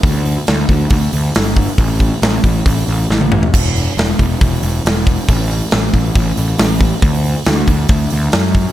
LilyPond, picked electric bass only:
\new Staff \with { instrumentName = "Picked electric bass" } { \clef bass \time 4/4 \key g \major \tempo 4 = 137 d,4 d,8 d,8 d,8 d,8 g,,4 | a,,4 a,,8 a,,8 a,,8 a,,8 a,,4 | e,,4 e,,8 e,,8 e,,8 e,,8 e,,4 | a,,4 a,,8 a,,8 a,,8 a,,8 a,,4 |
d,4 d,8 d,8 d,8 d,8 fis,4 | }